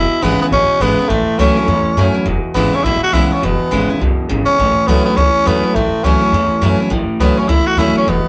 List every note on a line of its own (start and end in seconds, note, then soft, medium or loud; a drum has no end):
0.00 0.20 E2 medium
0.00 0.49 E2 medium
0.00 0.20 B2 medium
0.00 0.25 E4 loud
0.22 0.37 G#1 medium
0.22 0.49 E2 medium
0.22 0.49 C#3 medium
0.22 0.39 E3 loud
0.22 0.40 G#3 medium
0.22 0.40 B3 medium
0.22 0.40 B3 loud
0.22 0.40 E4 medium
0.41 0.46 B3 medium
0.41 0.52 B3 soft
0.41 0.51 E4 medium
0.51 0.66 A1 medium
0.51 0.78 E2 medium
0.51 0.78 B2 medium
0.51 1.08 B2 medium
0.51 0.82 C#4 loud
0.69 muted upright bass stroke medium
0.80 0.95 G#1 medium
0.80 1.07 E2 medium
0.80 1.07 C#3 medium
0.80 0.98 E3 medium
0.80 0.98 G#3 medium
0.80 1.10 B3 loud
0.80 0.98 B3 medium
0.80 0.98 E4 loud
0.98 1.10 B3 medium
0.98 1.09 E4 medium
0.98 muted upright bass stroke medium
1.09 1.25 A1 medium
1.09 1.36 A2 medium
1.09 1.66 A2 medium
1.09 1.36 E3 loud
1.09 1.40 A3 loud
1.28 muted upright bass stroke medium
1.38 1.54 C#2 medium
1.38 1.65 A2 medium
1.38 1.56 E3 medium
1.38 1.65 F#3 loud
1.38 1.56 A3 loud
1.38 2.15 C#4 medium
1.38 1.57 C#4 loud
1.38 1.56 E4 loud
1.57 1.68 C#4 medium
1.57 1.67 E4 medium
1.67 1.83 E2 medium
1.67 2.24 E2 medium
1.67 1.94 A2 medium
1.67 1.95 E3 medium
1.86 muted upright bass stroke medium
1.97 2.12 F#2 medium
1.97 2.24 A2 medium
1.97 2.14 E3 medium
1.97 2.24 F#3 medium
1.97 2.14 A3 medium
1.97 2.15 C#4 loud
1.97 2.13 E4 medium
2.14 2.26 C#4 medium
2.14 2.25 E4 medium
2.14 muted upright bass stroke medium
2.25 2.41 E1 loud
2.25 2.82 E2 medium
2.25 2.53 E2 medium
2.25 2.53 B2 medium
2.44 muted upright bass stroke medium
2.54 2.70 G#1 medium
2.54 2.82 E2 loud
2.54 2.82 C#3 loud
2.54 2.72 E3 loud
2.54 2.72 G#3 medium
2.54 2.76 B3 medium
2.54 2.73 B3 medium
2.54 2.72 E4 loud
2.73 2.84 B3 soft
2.73 2.85 C#4 medium
2.73 2.84 E4 medium
2.84 2.99 A1 loud
2.84 3.11 E2 medium
2.84 3.11 B2 medium
2.84 3.41 B2 medium
2.84 3.02 E4 loud
3.02 3.14 F#4 loud
3.02 muted upright bass stroke medium
3.13 3.28 B1 medium
3.13 3.40 E2 medium
3.13 3.40 C#3 medium
3.13 3.30 E3 medium
3.13 3.30 G#3 medium
3.13 3.31 B3 medium
3.13 3.26 E4 loud
3.13 3.30 E4 loud
3.26 3.34 E4 medium
3.31 3.42 B3 soft
3.31 3.46 C#4 medium
3.31 3.42 E4 medium
3.42 3.58 E1 medium
3.42 3.69 E2 medium
3.42 3.98 E2 medium
3.42 3.69 B2 loud
3.42 3.90 B3 medium
3.61 muted upright bass stroke medium
3.71 3.86 G#1 medium
3.71 3.98 E2 medium
3.71 3.98 C#3 loud
3.71 3.88 E3 medium
3.71 3.88 G#3 medium
3.71 3.89 B3 medium
3.71 3.88 E4 medium
3.89 4.00 B3 soft
3.89 4.00 E4 medium
3.89 muted upright bass stroke medium
4.00 4.16 B1 medium
4.00 4.27 E2 medium
4.00 4.29 F#2 medium
4.00 4.27 B2 loud
4.19 muted upright bass stroke medium
4.29 4.45 G#1 medium
4.29 4.56 E2 medium
4.29 4.57 G#2 medium
4.29 4.56 C#3 loud
4.45 4.88 C#4 loud
4.45 muted upright bass stroke medium
4.59 4.74 A1 loud
4.59 4.85 A2 medium
4.59 5.15 A2 medium
4.59 4.85 E3 loud
4.77 muted upright bass stroke medium
4.86 5.03 C#2 medium
4.86 5.14 A2 medium
4.86 5.05 E3 loud
4.86 5.14 F#3 loud
4.86 5.05 A3 medium
4.86 5.04 B3 loud
4.86 5.06 C#4 medium
4.86 5.05 E4 loud
5.05 5.17 B3 loud
5.05 5.17 C#4 soft
5.05 5.16 E4 medium
5.05 muted upright bass stroke medium
5.16 5.32 C#2 loud
5.16 5.73 E2 medium
5.16 5.43 A2 medium
5.16 5.44 E3 medium
5.16 5.48 C#4 loud
5.46 5.61 E2 medium
5.46 5.72 A2 medium
5.46 5.63 E3 medium
5.46 5.72 F#3 loud
5.46 5.63 A3 medium
5.46 5.76 B3 loud
5.46 5.64 C#4 medium
5.46 5.62 E4 medium
5.63 5.75 C#4 soft
5.63 5.74 E4 medium
5.63 muted upright bass stroke medium
5.75 5.90 A1 medium
5.75 6.01 A2 medium
5.75 6.31 A2 medium
5.75 6.01 E3 medium
5.75 6.05 A3 medium
5.93 muted upright bass stroke medium
6.04 6.19 C#2 medium
6.04 6.31 A2 medium
6.04 6.21 E3 loud
6.04 6.31 F#3 loud
6.04 6.21 A3 medium
6.04 6.80 C#4 loud
6.04 6.22 C#4 medium
6.04 6.20 E4 loud
6.21 6.33 C#4 soft
6.21 6.32 E4 medium
6.32 6.48 E2 medium
6.32 6.89 E2 medium
6.32 6.60 A2 medium
6.32 6.60 E3 loud
6.50 muted upright bass stroke medium
6.62 6.77 F#2 medium
6.62 6.89 A2 medium
6.62 6.79 E3 medium
6.62 6.89 F#3 loud
6.62 6.79 A3 medium
6.62 6.79 C#4 loud
6.62 6.79 E4 medium
6.80 6.92 C#4 medium
6.80 6.91 E4 medium
6.80 muted upright bass stroke medium
6.90 7.06 A1 loud
6.90 7.46 A2 medium
6.90 7.18 A2 medium
6.90 7.18 E3 loud
7.09 muted upright bass stroke medium
7.19 7.35 C#2 medium
7.19 7.47 A2 medium
7.19 7.37 E3 loud
7.19 7.47 F#3 loud
7.19 7.37 A3 loud
7.19 7.39 B3 medium
7.19 7.38 C#4 medium
7.19 7.36 E4 medium
7.37 7.50 C#4 medium
7.37 7.49 C#4 soft
7.37 7.48 E4 medium
7.48 7.64 C#2 loud
7.48 8.05 E2 medium
7.48 7.75 A2 medium
7.48 7.75 E3 medium
7.48 7.68 E4 loud
7.67 7.80 F#4 loud
7.77 7.92 D#2 medium
7.77 8.05 A2 medium
7.77 7.95 E3 medium
7.77 8.05 F#3 medium
7.77 7.96 A3 medium
7.77 7.96 C#4 medium
7.77 7.96 E4 loud
7.77 7.94 E4 medium
7.95 8.10 C#4 medium
7.95 8.07 C#4 soft
7.95 8.06 E4 medium
7.95 muted upright bass stroke medium
8.06 8.22 E1 medium
8.06 8.28 E2 medium
8.06 8.28 B2 loud
8.06 8.28 B3 medium
8.25 muted upright bass stroke medium